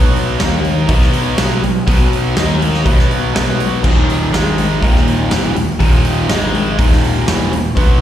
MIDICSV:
0, 0, Header, 1, 4, 480
1, 0, Start_track
1, 0, Key_signature, -6, "minor"
1, 0, Tempo, 491803
1, 1821, Time_signature, 4, 2, 24, 8
1, 7819, End_track
2, 0, Start_track
2, 0, Title_t, "Overdriven electric guitar"
2, 0, Program_c, 0, 29
2, 0, Note_on_c, 0, 47, 99
2, 0, Note_on_c, 0, 54, 97
2, 0, Note_on_c, 0, 59, 97
2, 373, Note_off_c, 0, 47, 0
2, 373, Note_off_c, 0, 54, 0
2, 375, Note_off_c, 0, 59, 0
2, 380, Note_on_c, 0, 51, 88
2, 386, Note_on_c, 0, 58, 100
2, 389, Note_on_c, 0, 63, 100
2, 853, Note_off_c, 0, 51, 0
2, 856, Note_off_c, 0, 58, 0
2, 858, Note_off_c, 0, 63, 0
2, 866, Note_on_c, 0, 47, 92
2, 872, Note_on_c, 0, 54, 106
2, 872, Note_on_c, 0, 59, 100
2, 1333, Note_off_c, 0, 47, 0
2, 1336, Note_off_c, 0, 54, 0
2, 1339, Note_off_c, 0, 59, 0
2, 1345, Note_on_c, 0, 47, 89
2, 1348, Note_on_c, 0, 54, 109
2, 1350, Note_on_c, 0, 59, 102
2, 1576, Note_off_c, 0, 47, 0
2, 1577, Note_off_c, 0, 54, 0
2, 1578, Note_off_c, 0, 59, 0
2, 1592, Note_on_c, 0, 47, 57
2, 1596, Note_on_c, 0, 54, 61
2, 1778, Note_off_c, 0, 47, 0
2, 1781, Note_off_c, 0, 54, 0
2, 1820, Note_on_c, 0, 47, 100
2, 1822, Note_on_c, 0, 54, 103
2, 1829, Note_on_c, 0, 59, 107
2, 2289, Note_off_c, 0, 47, 0
2, 2293, Note_on_c, 0, 51, 95
2, 2294, Note_off_c, 0, 54, 0
2, 2298, Note_off_c, 0, 59, 0
2, 2298, Note_on_c, 0, 58, 90
2, 2304, Note_on_c, 0, 63, 93
2, 2770, Note_off_c, 0, 51, 0
2, 2772, Note_off_c, 0, 58, 0
2, 2775, Note_off_c, 0, 63, 0
2, 2776, Note_on_c, 0, 47, 91
2, 2781, Note_on_c, 0, 54, 99
2, 2785, Note_on_c, 0, 59, 90
2, 3252, Note_off_c, 0, 47, 0
2, 3254, Note_off_c, 0, 54, 0
2, 3256, Note_off_c, 0, 59, 0
2, 3262, Note_on_c, 0, 47, 81
2, 3265, Note_on_c, 0, 54, 91
2, 3270, Note_on_c, 0, 59, 89
2, 3733, Note_off_c, 0, 47, 0
2, 3736, Note_off_c, 0, 54, 0
2, 3737, Note_on_c, 0, 46, 96
2, 3738, Note_off_c, 0, 59, 0
2, 3738, Note_on_c, 0, 39, 99
2, 3746, Note_on_c, 0, 51, 106
2, 4204, Note_off_c, 0, 51, 0
2, 4208, Note_off_c, 0, 46, 0
2, 4212, Note_off_c, 0, 39, 0
2, 4212, Note_on_c, 0, 44, 97
2, 4216, Note_on_c, 0, 51, 86
2, 4219, Note_on_c, 0, 56, 102
2, 4686, Note_off_c, 0, 51, 0
2, 4689, Note_off_c, 0, 44, 0
2, 4693, Note_off_c, 0, 56, 0
2, 4694, Note_on_c, 0, 39, 84
2, 4695, Note_on_c, 0, 46, 101
2, 4698, Note_on_c, 0, 51, 85
2, 5170, Note_off_c, 0, 39, 0
2, 5171, Note_off_c, 0, 46, 0
2, 5172, Note_off_c, 0, 51, 0
2, 5174, Note_on_c, 0, 40, 91
2, 5180, Note_on_c, 0, 47, 99
2, 5186, Note_on_c, 0, 52, 93
2, 5410, Note_off_c, 0, 40, 0
2, 5413, Note_off_c, 0, 47, 0
2, 5416, Note_off_c, 0, 52, 0
2, 5420, Note_on_c, 0, 39, 60
2, 5425, Note_on_c, 0, 46, 61
2, 5612, Note_off_c, 0, 39, 0
2, 5614, Note_off_c, 0, 46, 0
2, 5653, Note_on_c, 0, 39, 98
2, 5655, Note_on_c, 0, 46, 106
2, 5657, Note_on_c, 0, 51, 108
2, 6128, Note_off_c, 0, 51, 0
2, 6129, Note_off_c, 0, 39, 0
2, 6130, Note_off_c, 0, 46, 0
2, 6135, Note_on_c, 0, 44, 89
2, 6140, Note_on_c, 0, 51, 106
2, 6143, Note_on_c, 0, 56, 105
2, 6610, Note_off_c, 0, 44, 0
2, 6612, Note_off_c, 0, 51, 0
2, 6614, Note_off_c, 0, 56, 0
2, 6619, Note_on_c, 0, 39, 92
2, 6621, Note_on_c, 0, 46, 89
2, 6628, Note_on_c, 0, 51, 98
2, 7090, Note_off_c, 0, 39, 0
2, 7092, Note_off_c, 0, 46, 0
2, 7094, Note_on_c, 0, 40, 97
2, 7096, Note_off_c, 0, 51, 0
2, 7098, Note_on_c, 0, 47, 101
2, 7100, Note_on_c, 0, 52, 103
2, 7329, Note_off_c, 0, 40, 0
2, 7331, Note_off_c, 0, 47, 0
2, 7332, Note_off_c, 0, 52, 0
2, 7336, Note_on_c, 0, 39, 56
2, 7338, Note_on_c, 0, 46, 74
2, 7529, Note_off_c, 0, 39, 0
2, 7530, Note_off_c, 0, 46, 0
2, 7567, Note_on_c, 0, 47, 108
2, 7572, Note_on_c, 0, 54, 107
2, 7573, Note_on_c, 0, 59, 104
2, 7819, Note_off_c, 0, 47, 0
2, 7819, Note_off_c, 0, 54, 0
2, 7819, Note_off_c, 0, 59, 0
2, 7819, End_track
3, 0, Start_track
3, 0, Title_t, "Picked electric bass"
3, 0, Program_c, 1, 34
3, 0, Note_on_c, 1, 35, 87
3, 352, Note_off_c, 1, 35, 0
3, 387, Note_on_c, 1, 39, 100
3, 830, Note_off_c, 1, 39, 0
3, 866, Note_on_c, 1, 35, 103
3, 1310, Note_off_c, 1, 35, 0
3, 1343, Note_on_c, 1, 35, 87
3, 1566, Note_off_c, 1, 35, 0
3, 1587, Note_on_c, 1, 35, 81
3, 1808, Note_off_c, 1, 35, 0
3, 1831, Note_on_c, 1, 35, 91
3, 2273, Note_off_c, 1, 35, 0
3, 2306, Note_on_c, 1, 39, 94
3, 2750, Note_off_c, 1, 39, 0
3, 2789, Note_on_c, 1, 35, 94
3, 3232, Note_off_c, 1, 35, 0
3, 3267, Note_on_c, 1, 35, 92
3, 3711, Note_off_c, 1, 35, 0
3, 3748, Note_on_c, 1, 27, 82
3, 4192, Note_off_c, 1, 27, 0
3, 4220, Note_on_c, 1, 32, 93
3, 4667, Note_off_c, 1, 32, 0
3, 4706, Note_on_c, 1, 27, 86
3, 5150, Note_off_c, 1, 27, 0
3, 5178, Note_on_c, 1, 28, 94
3, 5403, Note_off_c, 1, 28, 0
3, 5420, Note_on_c, 1, 27, 72
3, 5643, Note_off_c, 1, 27, 0
3, 5664, Note_on_c, 1, 27, 96
3, 6108, Note_off_c, 1, 27, 0
3, 6142, Note_on_c, 1, 32, 91
3, 6587, Note_off_c, 1, 32, 0
3, 6621, Note_on_c, 1, 27, 90
3, 7066, Note_off_c, 1, 27, 0
3, 7103, Note_on_c, 1, 28, 93
3, 7324, Note_off_c, 1, 28, 0
3, 7339, Note_on_c, 1, 27, 79
3, 7561, Note_off_c, 1, 27, 0
3, 7581, Note_on_c, 1, 35, 88
3, 7819, Note_off_c, 1, 35, 0
3, 7819, End_track
4, 0, Start_track
4, 0, Title_t, "Drums"
4, 157, Note_on_c, 9, 46, 55
4, 254, Note_off_c, 9, 46, 0
4, 389, Note_on_c, 9, 46, 81
4, 390, Note_on_c, 9, 38, 110
4, 486, Note_off_c, 9, 46, 0
4, 488, Note_off_c, 9, 38, 0
4, 630, Note_on_c, 9, 46, 59
4, 727, Note_off_c, 9, 46, 0
4, 863, Note_on_c, 9, 46, 91
4, 868, Note_on_c, 9, 36, 110
4, 960, Note_off_c, 9, 46, 0
4, 966, Note_off_c, 9, 36, 0
4, 992, Note_on_c, 9, 38, 33
4, 1089, Note_off_c, 9, 38, 0
4, 1105, Note_on_c, 9, 46, 61
4, 1202, Note_off_c, 9, 46, 0
4, 1346, Note_on_c, 9, 46, 100
4, 1348, Note_on_c, 9, 38, 127
4, 1443, Note_off_c, 9, 46, 0
4, 1445, Note_off_c, 9, 38, 0
4, 1596, Note_on_c, 9, 46, 64
4, 1693, Note_off_c, 9, 46, 0
4, 1831, Note_on_c, 9, 36, 105
4, 1832, Note_on_c, 9, 46, 91
4, 1929, Note_off_c, 9, 36, 0
4, 1929, Note_off_c, 9, 46, 0
4, 2078, Note_on_c, 9, 46, 59
4, 2176, Note_off_c, 9, 46, 0
4, 2309, Note_on_c, 9, 46, 76
4, 2311, Note_on_c, 9, 38, 110
4, 2407, Note_off_c, 9, 46, 0
4, 2409, Note_off_c, 9, 38, 0
4, 2557, Note_on_c, 9, 46, 61
4, 2655, Note_off_c, 9, 46, 0
4, 2674, Note_on_c, 9, 38, 33
4, 2772, Note_off_c, 9, 38, 0
4, 2786, Note_on_c, 9, 46, 81
4, 2789, Note_on_c, 9, 36, 109
4, 2884, Note_off_c, 9, 46, 0
4, 2887, Note_off_c, 9, 36, 0
4, 2916, Note_on_c, 9, 38, 32
4, 3013, Note_off_c, 9, 38, 0
4, 3033, Note_on_c, 9, 46, 54
4, 3131, Note_off_c, 9, 46, 0
4, 3276, Note_on_c, 9, 46, 81
4, 3278, Note_on_c, 9, 38, 123
4, 3374, Note_off_c, 9, 46, 0
4, 3376, Note_off_c, 9, 38, 0
4, 3514, Note_on_c, 9, 46, 62
4, 3611, Note_off_c, 9, 46, 0
4, 3747, Note_on_c, 9, 49, 104
4, 3749, Note_on_c, 9, 36, 97
4, 3844, Note_off_c, 9, 49, 0
4, 3847, Note_off_c, 9, 36, 0
4, 3997, Note_on_c, 9, 46, 56
4, 4094, Note_off_c, 9, 46, 0
4, 4235, Note_on_c, 9, 46, 80
4, 4237, Note_on_c, 9, 38, 116
4, 4333, Note_off_c, 9, 46, 0
4, 4335, Note_off_c, 9, 38, 0
4, 4469, Note_on_c, 9, 46, 61
4, 4567, Note_off_c, 9, 46, 0
4, 4709, Note_on_c, 9, 36, 107
4, 4718, Note_on_c, 9, 46, 86
4, 4807, Note_off_c, 9, 36, 0
4, 4816, Note_off_c, 9, 46, 0
4, 4836, Note_on_c, 9, 38, 32
4, 4934, Note_off_c, 9, 38, 0
4, 4953, Note_on_c, 9, 46, 63
4, 5051, Note_off_c, 9, 46, 0
4, 5184, Note_on_c, 9, 46, 86
4, 5185, Note_on_c, 9, 38, 117
4, 5281, Note_off_c, 9, 46, 0
4, 5283, Note_off_c, 9, 38, 0
4, 5428, Note_on_c, 9, 46, 64
4, 5526, Note_off_c, 9, 46, 0
4, 5665, Note_on_c, 9, 36, 106
4, 5666, Note_on_c, 9, 46, 92
4, 5762, Note_off_c, 9, 36, 0
4, 5764, Note_off_c, 9, 46, 0
4, 5900, Note_on_c, 9, 46, 62
4, 5998, Note_off_c, 9, 46, 0
4, 6142, Note_on_c, 9, 46, 87
4, 6144, Note_on_c, 9, 38, 112
4, 6240, Note_off_c, 9, 46, 0
4, 6242, Note_off_c, 9, 38, 0
4, 6388, Note_on_c, 9, 46, 58
4, 6485, Note_off_c, 9, 46, 0
4, 6625, Note_on_c, 9, 36, 109
4, 6627, Note_on_c, 9, 46, 89
4, 6722, Note_off_c, 9, 36, 0
4, 6724, Note_off_c, 9, 46, 0
4, 6756, Note_on_c, 9, 38, 34
4, 6853, Note_off_c, 9, 38, 0
4, 6872, Note_on_c, 9, 46, 55
4, 6970, Note_off_c, 9, 46, 0
4, 7103, Note_on_c, 9, 46, 83
4, 7105, Note_on_c, 9, 38, 124
4, 7201, Note_off_c, 9, 46, 0
4, 7203, Note_off_c, 9, 38, 0
4, 7346, Note_on_c, 9, 46, 63
4, 7444, Note_off_c, 9, 46, 0
4, 7582, Note_on_c, 9, 36, 110
4, 7585, Note_on_c, 9, 46, 75
4, 7680, Note_off_c, 9, 36, 0
4, 7683, Note_off_c, 9, 46, 0
4, 7819, End_track
0, 0, End_of_file